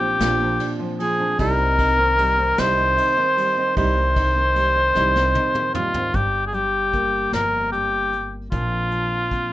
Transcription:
0.00 0.16 A#1 medium
0.00 0.19 A#2 medium
0.00 0.19 F3 medium
0.00 0.78 F3 medium
0.00 1.00 C4 medium
0.00 0.39 C4 medium
0.00 0.19 D4 medium
0.00 0.40 D4 medium
0.00 0.73 G4 loud
0.20 0.58 A#1 medium
0.20 1.38 A#2 medium
0.20 0.98 F3 medium
0.20 0.59 D4 medium
0.20 snare medium
0.20 ride medium
0.40 0.79 C4 medium
0.40 1.19 D4 medium
0.60 1.39 D4 medium
0.60 ride medium
0.79 1.34 F3 medium
0.79 1.18 C4 medium
0.99 1.39 F3 medium
0.99 2.18 C4 medium
0.99 1.37 G#4 medium
0.99 ride soft
1.20 1.47 C4 medium
1.20 1.35 D4 medium
1.38 2.54 C2 loud
1.38 1.98 C3 medium
1.38 2.17 G3 medium
1.38 1.77 D#4 medium
1.38 2.61 A#4 loud
1.38 kick medium
1.38 ride medium
1.59 1.97 C4 medium
1.59 2.38 D#4 medium
1.79 2.57 D#4 medium
1.79 kick medium
1.79 ride medium
1.98 3.16 D#3 medium
1.98 2.36 C4 medium
2.18 2.56 G3 medium
2.18 3.37 C4 medium
2.18 ride medium
2.38 2.76 C4 medium
2.38 2.77 D#4 medium
2.57 2.96 C2 medium
2.57 3.17 C3 medium
2.57 3.36 G3 medium
2.57 2.96 D#4 medium
2.57 3.76 C5 loud
2.57 snare medium
2.57 ride medium
2.78 3.16 C4 medium
2.78 3.56 D#4 medium
2.97 3.75 D#4 medium
2.97 ride soft
3.17 4.35 D#3 medium
3.17 3.55 C4 medium
3.37 3.75 G3 medium
3.37 3.73 C4 medium
3.37 ride soft
3.57 3.95 C4 medium
3.57 3.72 D#4 medium
3.76 4.92 C2 loud
3.76 4.36 C3 medium
3.76 4.54 G3 medium
3.76 4.15 D#4 medium
3.76 5.71 C5 loud
3.76 kick medium
3.76 ride medium
3.97 4.34 C4 medium
3.97 4.75 D#4 medium
4.16 4.95 D#4 medium
4.16 kick medium
4.16 ride medium
4.36 5.54 D#3 medium
4.36 4.74 C4 medium
4.56 4.94 G3 medium
4.56 6.09 C4 medium
4.56 ride medium
4.76 5.14 C4 medium
4.76 5.15 D#4 medium
4.95 5.33 C2 medium
4.95 5.55 C3 medium
4.95 5.74 G3 medium
4.95 5.34 D#4 medium
4.95 snare medium
5.16 5.54 C4 medium
5.16 6.10 D#4 medium
5.16 snare medium
5.35 6.22 D#4 medium
5.35 high tom medium
5.55 6.15 D#3 medium
5.55 5.94 C4 soft
5.55 mid tom medium
5.75 5.94 A#2 medium
5.75 6.23 G3 medium
5.75 6.17 F4 medium
5.75 mid tom medium
5.94 6.13 G#2 medium
5.94 6.23 C4 medium
5.94 floor tom medium
6.14 7.29 G1 medium
6.14 7.32 G2 medium
6.14 6.47 G4 medium
6.14 kick medium
6.14 closed hi-hat medium
6.47 6.56 G#4 medium
6.53 8.47 G3 medium
6.53 7.33 G4 medium
6.53 closed hi-hat soft
6.93 8.47 A#3 medium
6.93 kick medium
6.93 closed hi-hat medium
7.32 8.48 G1 medium
7.32 7.72 F2 medium
7.32 7.70 A#4 loud
7.32 snare medium
7.32 closed hi-hat medium
7.72 8.12 G2 medium
7.72 8.35 G4 medium
7.72 closed hi-hat soft
8.13 closed hi-hat soft
8.51 9.53 A#1 medium
8.51 9.53 A#2 medium
8.51 8.90 F3 medium
8.51 9.32 C4 medium
8.51 9.53 D4 medium
8.51 9.53 F4 medium
8.51 kick medium
8.51 closed hi-hat medium
8.92 9.53 F3 medium
8.92 closed hi-hat soft
9.31 9.53 C4 medium
9.31 kick medium
9.31 closed hi-hat soft

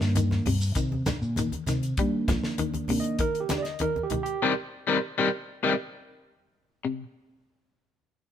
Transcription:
0.00 0.38 G2 medium
0.00 0.43 D#3 medium
0.00 0.11 F3 medium
0.00 0.43 A#3 medium
0.00 0.43 D4 medium
0.00 snare medium
0.00 shekere soft
0.15 0.41 D#3 medium
0.15 closed hi-hat medium
0.15 high conga medium
0.15 shekere medium
0.31 snare soft
0.31 high conga medium
0.46 0.72 G2 medium
0.46 0.71 C3 medium
0.46 open hi-hat medium
0.46 low conga medium
0.46 shekere soft
0.61 shekere medium
0.75 1.01 C3 loud
0.75 1.01 D#3 medium
0.75 kick medium
0.75 closed hi-hat medium
0.75 shekere medium
0.92 high conga medium
1.06 1.32 D3 medium
1.06 snare medium
1.06 closed hi-hat medium
1.06 high conga loud
1.06 low conga medium
1.06 shekere medium
1.22 1.47 A#2 loud
1.22 shekere soft
1.36 1.63 D#3 medium
1.36 closed hi-hat medium
1.36 high conga medium
1.36 shekere medium
1.52 closed hi-hat soft
1.52 high conga medium
1.66 1.92 C3 medium
1.66 1.93 D#3 medium
1.66 snare soft
1.66 closed hi-hat medium
1.66 low conga medium
1.66 shekere medium
1.83 closed hi-hat soft
1.83 shekere soft
1.97 2.87 D#3 medium
1.97 2.23 G3 medium
1.97 2.88 A#3 soft
1.97 2.89 D4 medium
1.97 kick medium
1.97 closed hi-hat medium
2.28 2.53 F3 medium
2.28 kick medium
2.28 snare medium
2.28 closed hi-hat medium
2.28 high conga medium
2.28 low conga medium
2.44 snare medium
2.58 2.84 D#3 medium
2.58 closed hi-hat medium
2.58 high conga medium
2.74 closed hi-hat soft
2.74 high conga medium
2.88 3.14 C3 medium
2.88 3.17 D#3 soft
2.88 3.17 A#3 soft
2.88 3.17 D4 medium
2.88 open hi-hat medium
2.88 low conga medium
3.00 3.20 D#5 loud
3.04 closed hi-hat soft
3.19 3.45 D#3 medium
3.19 3.40 A#4 loud
3.19 kick medium
3.19 closed hi-hat medium
3.35 closed hi-hat soft
3.40 3.60 G4 medium
3.49 3.75 D3 medium
3.49 snare medium
3.49 closed hi-hat medium
3.49 high conga loud
3.58 3.62 D5 medium
3.62 3.81 D#5 medium
3.62 snare soft
3.62 closed hi-hat soft
3.79 4.05 D#3 medium
3.79 4.01 A#4 loud
3.79 closed hi-hat medium
3.79 high conga medium
3.96 high conga medium
4.03 4.22 G4 medium
4.10 4.36 D#3 medium
4.10 closed hi-hat soft
4.10 low conga medium
4.23 4.41 G4 loud
4.23 closed hi-hat soft
4.42 4.52 C3 medium
4.42 4.52 D#3 medium
4.42 4.52 G3 medium
4.42 4.52 G4 loud
4.42 4.52 A#4 loud
4.42 4.52 C5 loud
4.87 4.97 C3 medium
4.87 4.97 D#3 medium
4.87 4.97 G3 medium
4.87 4.98 G4 medium
4.87 4.98 A#4 medium
4.87 4.98 C5 medium
5.18 5.28 C3 medium
5.18 5.28 D#3 medium
5.18 5.28 G3 medium
5.18 5.28 G4 medium
5.18 5.28 A#4 medium
5.18 5.28 C5 medium
5.63 5.73 C3 medium
5.63 5.73 D#3 medium
5.63 5.73 G3 medium
5.63 5.73 G4 medium
5.63 5.73 A#4 medium
5.63 5.73 C5 medium
6.85 7.03 C3 medium

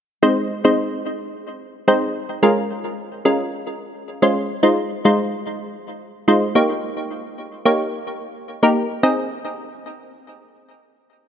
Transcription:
0.23 0.54 G#3 medium
0.23 0.54 C4 medium
0.23 0.54 D#4 medium
0.23 0.54 C5 medium
0.65 1.47 G#3 medium
0.65 1.48 C4 medium
0.65 1.48 D#4 medium
0.65 1.48 C5 medium
1.88 2.30 G#3 medium
1.88 2.30 C4 medium
1.88 2.30 D#4 medium
1.88 2.30 C5 medium
2.43 3.05 G#3 medium
2.43 3.05 C#4 medium
2.43 3.05 F4 medium
2.43 3.05 A#4 loud
3.25 3.98 G#3 medium
3.25 3.98 C#4 medium
3.25 3.99 F4 medium
3.25 3.99 A#4 loud
4.22 4.53 G#3 medium
4.22 4.53 C#4 medium
4.22 4.53 F4 medium
4.22 4.54 C5 loud
4.63 4.94 G#3 medium
4.63 4.94 D#4 medium
4.63 4.94 F4 medium
4.63 4.94 C5 loud
5.05 5.88 G#3 medium
5.05 5.88 D#4 medium
5.05 5.88 F4 medium
5.05 5.88 C5 loud
6.28 6.55 G#3 medium
6.28 6.54 D#4 medium
6.28 6.56 F4 medium
6.28 6.56 C5 medium
6.55 7.44 A#3 medium
6.55 7.44 D#4 medium
6.55 7.44 G4 medium
6.55 7.44 C#5 loud
7.65 8.39 A#3 medium
7.65 8.39 D#4 medium
7.65 8.39 G4 medium
7.65 8.39 C#5 loud
8.63 8.94 A#3 medium
8.63 8.94 D#4 medium
8.63 8.94 G4 medium
8.63 8.94 A#4 loud
9.03 9.29 C4 medium
9.03 9.29 D#4 medium
9.03 9.29 G#4 medium
9.03 9.29 D#5 medium

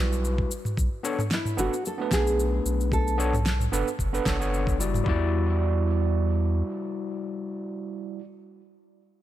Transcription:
0.00 0.47 B1 medium
0.00 0.49 G3 medium
0.00 0.49 E4 medium
0.00 0.50 F#4 medium
0.00 0.50 B4 medium
0.12 shaker soft
0.25 shaker soft
0.38 kick loud
0.51 shaker medium
0.65 mid tom medium
0.65 shaker soft
0.77 0.89 B1 medium
0.77 kick loud
0.77 shaker soft
1.03 1.19 B3 medium
1.03 1.19 D4 medium
1.03 1.20 A4 medium
1.03 1.20 C#5 loud
1.03 shaker medium
1.19 mid tom medium
1.19 shaker soft
1.31 1.60 E4 loud
1.31 snare medium
1.31 shaker soft
1.45 mid tom medium
1.45 shaker soft
1.57 1.69 F#1 medium
1.57 1.73 B3 medium
1.57 1.73 D4 medium
1.57 1.86 F#4 loud
1.57 1.74 A4 medium
1.57 1.74 B4 loud
1.57 shaker medium
1.73 shaker soft
1.86 2.13 A4 loud
1.86 shaker soft
1.98 3.16 A3 medium
1.98 3.15 B3 medium
1.98 3.16 D4 medium
1.98 3.17 B4 medium
2.11 2.61 B1 medium
2.11 2.95 G#4 loud
2.11 kick loud
2.11 snare medium
2.11 shaker medium
2.27 shaker soft
2.40 shaker soft
2.65 3.68 B1 medium
2.65 shaker medium
2.81 shaker soft
2.92 4.49 A4 loud
2.92 kick loud
2.92 shaker soft
3.08 shaker soft
3.18 3.34 B3 medium
3.18 3.34 D4 medium
3.18 3.34 A4 medium
3.18 3.35 C#5 loud
3.18 shaker medium
3.33 mid tom medium
3.33 shaker soft
3.46 snare medium
3.46 shaker soft
3.60 mid tom medium
3.60 shaker soft
3.72 3.84 F#1 loud
3.72 3.87 B3 loud
3.72 3.88 D4 medium
3.72 3.88 A4 medium
3.72 3.88 B4 loud
3.72 shaker medium
3.88 shaker soft
3.99 4.20 F#1 medium
3.99 kick medium
3.99 shaker soft
4.13 4.23 B3 medium
4.13 4.23 D4 medium
4.13 4.24 A4 medium
4.13 4.24 B4 medium
4.13 shaker soft
4.25 5.02 F#1 medium
4.25 4.36 B3 medium
4.25 4.37 D4 medium
4.25 4.37 A4 medium
4.25 4.37 C#5 medium
4.25 kick loud
4.25 snare medium
4.25 shaker medium
4.40 4.76 B3 medium
4.40 4.76 D4 medium
4.40 4.77 A4 medium
4.40 4.77 C#5 medium
4.40 shaker soft
4.54 shaker soft
4.67 kick loud
4.67 shaker soft
4.79 5.03 G3 medium
4.79 5.04 E4 medium
4.79 5.06 F#4 medium
4.79 5.08 D5 medium
4.79 shaker medium
4.94 mid tom medium
4.94 shaker soft
5.04 6.63 E2 medium
5.04 8.18 G3 medium
5.04 8.20 E4 medium
5.04 8.22 F#4 medium
5.04 kick loud
5.08 8.22 E4 medium
5.08 8.24 D5 loud

